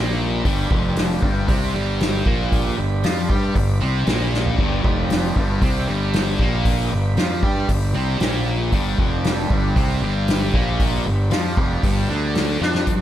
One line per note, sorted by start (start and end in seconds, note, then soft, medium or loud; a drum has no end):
0.00 0.42 A#1 loud
0.00 0.44 A#2 loud
0.00 12.84 G3 medium
0.00 0.44 A#3 loud
0.00 12.84 D4 medium
0.00 12.84 B5 medium
0.45 0.69 G1 medium
0.45 0.70 G2 loud
0.45 0.70 G3 loud
0.45 kick loud
0.45 open hi-hat medium
0.71 1.19 F1 medium
0.71 1.22 F2 medium
0.71 1.22 F3 loud
0.71 kick loud
0.96 snare loud
0.96 open hi-hat medium
1.22 1.47 G1 loud
1.22 1.48 G2 medium
1.22 1.48 G3 medium
1.22 kick loud
1.48 1.73 C2 loud
1.48 1.73 C3 loud
1.48 1.74 C4 loud
1.48 kick loud
1.48 open hi-hat medium
1.74 2.23 G1 medium
1.74 2.25 G2 medium
1.74 2.26 G3 loud
2.00 snare loud
2.00 open hi-hat soft
2.26 2.74 A#1 medium
2.26 2.77 A#2 medium
2.26 2.77 A#3 medium
2.26 kick loud
2.52 kick loud
2.52 open hi-hat medium
2.78 3.02 G1 medium
2.78 2.99 G2 medium
3.03 3.28 F2 loud
3.03 3.29 F3 medium
3.03 3.29 F4 loud
3.03 snare medium
3.03 open hi-hat medium
3.29 3.54 G2 medium
3.29 3.55 G3 medium
3.29 3.55 G4 medium
3.29 kick loud
3.55 3.80 G1 medium
3.55 3.76 G2 medium
3.55 kick medium
3.55 open hi-hat medium
3.81 4.06 C2 medium
3.81 4.06 C3 loud
3.81 4.06 C4 loud
4.07 4.55 A#1 medium
4.07 4.58 A#2 loud
4.07 4.59 A#3 loud
4.07 snare loud
4.07 open hi-hat soft
4.34 snare medium
4.46 floor tom medium
4.59 4.83 G1 medium
4.59 4.84 G2 medium
4.59 4.85 G3 loud
4.59 kick loud
4.59 crash medium
4.84 5.33 F1 medium
4.84 5.36 F2 medium
4.84 5.36 F3 medium
4.84 kick loud
5.10 snare loud
5.10 open hi-hat medium
5.36 5.61 G1 medium
5.36 5.62 G2 medium
5.36 5.62 G3 medium
5.36 kick loud
5.61 5.86 C2 medium
5.61 5.87 C3 medium
5.61 5.87 C4 loud
5.61 kick loud
5.61 open hi-hat medium
5.88 6.37 G1 medium
5.88 6.39 G2 medium
5.88 6.39 G3 loud
6.13 snare loud
6.13 open hi-hat medium
6.39 6.88 A#1 medium
6.39 6.91 A#2 medium
6.39 6.91 A#3 loud
6.39 kick medium
6.65 kick loud
6.65 open hi-hat medium
6.91 7.16 G1 medium
6.91 7.12 G2 medium
7.17 7.42 F2 loud
7.17 7.43 F3 medium
7.17 7.43 F4 loud
7.17 snare loud
7.17 open hi-hat medium
7.43 7.67 G2 medium
7.43 7.69 G3 medium
7.43 7.69 G4 medium
7.43 kick loud
7.69 7.93 G1 medium
7.69 7.90 G2 medium
7.69 kick medium
7.69 open hi-hat medium
7.94 8.19 C2 medium
7.94 8.20 C3 loud
7.94 8.20 C4 loud
8.20 8.69 A#1 medium
8.20 8.72 A#2 loud
8.20 8.72 A#3 loud
8.20 snare loud
8.20 open hi-hat medium
8.72 8.97 G1 medium
8.72 8.98 G2 medium
8.72 8.98 G3 loud
8.72 kick loud
8.72 open hi-hat medium
8.98 9.47 F1 medium
8.98 9.50 F2 medium
8.98 9.50 F3 medium
8.98 kick loud
9.24 snare loud
9.24 open hi-hat medium
9.50 9.75 G1 loud
9.50 9.76 G2 medium
9.50 9.76 G3 medium
9.50 kick loud
9.76 10.01 C2 medium
9.76 10.01 C3 medium
9.76 10.02 C4 loud
9.76 kick loud
9.76 open hi-hat medium
10.01 10.51 G1 medium
10.01 10.53 G2 medium
10.01 10.53 G3 loud
10.28 snare medium
10.28 open hi-hat medium
10.54 11.02 A#1 loud
10.54 11.05 A#2 medium
10.54 11.05 A#3 medium
10.54 kick loud
10.80 kick loud
10.80 open hi-hat medium
11.06 11.30 G1 medium
11.06 11.27 G2 medium
11.31 11.56 F2 loud
11.31 11.57 F3 medium
11.31 11.57 F4 loud
11.31 snare loud
11.31 open hi-hat medium
11.57 11.82 F1 medium
11.57 11.83 F2 medium
11.57 11.83 F3 loud
11.57 kick loud
11.83 12.08 G1 medium
11.83 12.09 G2 loud
11.83 12.09 G3 loud
11.83 kick loud
11.83 open hi-hat medium
12.09 12.58 D2 medium
12.09 12.60 D3 loud
12.09 12.61 D4 loud
12.35 snare loud
12.35 open hi-hat medium
12.61 12.86 F2 loud
12.61 12.86 F3 loud
12.61 13.01 D4 medium
12.61 12.87 F4 medium
12.61 snare medium
12.75 snare medium
12.87 13.01 G2 medium
12.87 kick loud
12.87 closed hi-hat medium